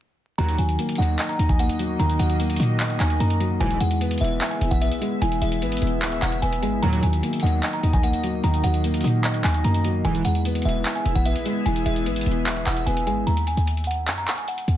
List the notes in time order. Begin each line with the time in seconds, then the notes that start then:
0.38 D#2 A#2 D#3 F#3 A#3 D#4 F#4 D#5 A#5, closed hi-hat
0.49 closed hi-hat
0.58 D#2 F#3 G#5, closed hi-hat
0.69 closed hi-hat
0.79 A#3, closed hi-hat
0.89 closed hi-hat
0.95 D#2 D#4 F#5, closed hi-hat
1.02 closed hi-hat
1.19 D#5, clap, closed hi-hat
1.29 A#5, closed hi-hat
1.39 D#2 D#4, closed hi-hat
1.49 G#5, kick, closed hi-hat
1.59 A#3 F#5, closed hi-hat
1.69 closed hi-hat
1.79 F#3, closed hi-hat
1.99 D#2 D#3 A#5, closed hi-hat
2.10 closed hi-hat
2.19 D#2 F#3 F#5, closed hi-hat
2.30 closed hi-hat
2.40 A#3, closed hi-hat
2.50 E2, closed hi-hat
2.56 A#2 D#4, closed hi-hat, open hi-hat
2.63 closed hi-hat
2.80 D#5, clap, closed hi-hat
2.90 closed hi-hat
3.00 D#2 D#4 G#5, clap, closed hi-hat
3.10 closed hi-hat
3.20 F#2 A#3 A#5, closed hi-hat
3.30 closed hi-hat
3.40 F#3, closed hi-hat
3.60 E1 B1 G#2 E3 B3 E4 G#4 E5 G#5, closed hi-hat
3.71 closed hi-hat
3.80 E2 G#3 F#5, closed hi-hat
3.91 closed hi-hat
4.01 B3, closed hi-hat
4.11 closed hi-hat
4.18 E1 E4 E5, closed hi-hat
4.24 closed hi-hat
4.41 E5, clap, closed hi-hat
4.51 G#5, closed hi-hat
4.61 E1 E4, closed hi-hat
4.71 F#5, kick, closed hi-hat
4.81 B3 E5, closed hi-hat
4.91 B1, closed hi-hat
5.01 G#3, closed hi-hat
5.21 E1 E3 G#5, closed hi-hat
5.32 closed hi-hat
5.42 E1 G#3 E5, closed hi-hat
5.52 closed hi-hat
5.62 G#1 B3, closed hi-hat
5.72 closed hi-hat
5.77 closed hi-hat
5.82 E1 E4, closed hi-hat, open hi-hat
5.87 closed hi-hat
6.02 D#1 E5, clap, closed hi-hat
6.12 closed hi-hat
6.22 E1 E4 F#5, clap, closed hi-hat
6.32 closed hi-hat
6.42 E1 B3 G#5, closed hi-hat
6.53 closed hi-hat
6.62 G#1 G#3 G#5, closed hi-hat
6.82 D#2 A#2 D#3 F#3 A#3 D#4 F#4 D#5 A#5, closed hi-hat
6.93 closed hi-hat
7.03 D#2 F#3 G#5, closed hi-hat
7.13 closed hi-hat
7.23 A#3, closed hi-hat
7.33 closed hi-hat
7.40 D#2 D#4 F#5, closed hi-hat
7.46 closed hi-hat
7.63 D#5, clap, closed hi-hat
7.73 A#5, closed hi-hat
7.83 D#2 D#4, closed hi-hat
7.93 G#5, kick, closed hi-hat
8.03 A#3 F#5, closed hi-hat
8.13 closed hi-hat
8.24 F#3, closed hi-hat
8.44 D#2 D#3 A#5, closed hi-hat
8.54 closed hi-hat
8.64 D#2 F#3 F#5, closed hi-hat
8.74 closed hi-hat
8.84 A#3, closed hi-hat
8.94 E2, closed hi-hat
9.01 A#2 D#4, closed hi-hat, open hi-hat
9.07 closed hi-hat
9.24 D#5, clap, closed hi-hat
9.34 closed hi-hat
9.44 D#2 D#4 G#5, clap, closed hi-hat
9.54 closed hi-hat
9.64 F#2 A#3 A#5, closed hi-hat
9.75 closed hi-hat
9.85 F#3, closed hi-hat
10.05 E1 B1 G#2 E3 B3 E4 G#4 E5 G#5, closed hi-hat
10.15 closed hi-hat
10.25 E2 G#3 F#5, closed hi-hat
10.35 closed hi-hat
10.45 B3, closed hi-hat
10.55 closed hi-hat
10.62 E1 E4 E5, closed hi-hat
10.69 closed hi-hat
10.85 E5, clap, closed hi-hat
10.95 G#5, closed hi-hat
11.05 E1 E4, closed hi-hat
11.15 F#5, kick, closed hi-hat
11.26 B3 E5, closed hi-hat
11.36 B1, closed hi-hat
11.46 G#3, closed hi-hat
11.66 E1 E3 G#5, closed hi-hat
11.76 closed hi-hat
11.86 E1 G#3 E5, closed hi-hat
11.96 closed hi-hat
12.06 G#1 B3, closed hi-hat
12.16 closed hi-hat
12.21 closed hi-hat
12.26 E1 E4, closed hi-hat, open hi-hat
12.31 closed hi-hat
12.46 D#1 E5, clap, closed hi-hat
12.56 closed hi-hat
12.66 E1 E4 F#5, clap, closed hi-hat
12.77 closed hi-hat
12.86 E1 B3 G#5, closed hi-hat
12.97 closed hi-hat
13.07 G#1 G#3 G#5, closed hi-hat
13.27 D#2 A#5, closed hi-hat
13.37 closed hi-hat
13.47 G#5, closed hi-hat
13.57 D#2, closed hi-hat
13.67 closed hi-hat
13.77 closed hi-hat
13.84 F#5, closed hi-hat
13.91 closed hi-hat
14.07 F#2, clap, closed hi-hat
14.18 A#5, closed hi-hat
14.28 clap, closed hi-hat
14.38 G#5, closed hi-hat
14.48 F#5, closed hi-hat
14.58 closed hi-hat
14.68 D#2, closed hi-hat